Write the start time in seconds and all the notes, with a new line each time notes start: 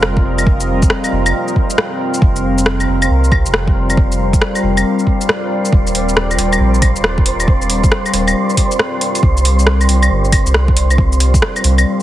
Already playing: F1 G3 C4 F4 A#4 C5 D#5, impact
0.03 cross-stick
0.17 kick
0.38 claves, shaker
0.47 kick
0.60 shaker
0.82 kick, shaker
0.90 cross-stick
1.04 claves, shaker
1.12 F1
1.26 claves, shaker
1.48 shaker
1.56 kick
1.70 shaker
1.78 cross-stick
2.14 shaker
2.22 F1 G3, kick
2.36 shaker
2.58 shaker
2.66 cross-stick
2.80 claves, shaker
2.88 F1
3.02 claves, shaker
3.10 C2
3.24 D5, shaker
3.32 kick, claves
3.46 F1, shaker
3.54 cross-stick
3.67 kick
3.90 claves, shaker
3.97 kick
4.12 shaker
4.33 kick, shaker
4.42 cross-stick
4.55 claves, shaker
4.63 F1
4.77 claves, shaker
4.99 shaker
5.07 kick
5.21 shaker
5.29 cross-stick
5.65 shaker
5.73 D#1, kick
5.87 shaker
5.95 open hi-hat
6.09 shaker
6.17 cross-stick
6.31 claves, shaker
6.38 D#1, open hi-hat
6.53 claves, shaker
6.60 A#1
6.74 shaker
6.82 kick, open hi-hat, claves
6.96 D#1, shaker
7.04 cross-stick
7.18 kick
7.26 open hi-hat
7.40 claves, shaker
7.48 kick
7.62 shaker
7.70 open hi-hat
7.84 kick, shaker
7.92 cross-stick
8.06 claves, shaker
8.13 D#1, open hi-hat
8.28 claves, shaker
8.50 shaker
8.57 kick, open hi-hat
8.71 shaker
8.79 cross-stick
9.01 open hi-hat
9.15 open hi-hat, shaker
9.23 C2, kick
9.37 shaker
9.45 open hi-hat
9.59 shaker
9.67 cross-stick
9.81 claves, shaker
9.88 C2, open hi-hat
10.03 claves, shaker
10.11 G1
10.25 shaker
10.32 kick, open hi-hat, claves
10.46 C2, shaker
10.54 cross-stick
10.68 kick
10.77 open hi-hat
10.91 claves, shaker
10.98 kick
11.12 shaker
11.20 open hi-hat
11.34 kick, shaker
11.42 cross-stick
11.56 claves, shaker
11.64 C2, open hi-hat
11.78 claves, shaker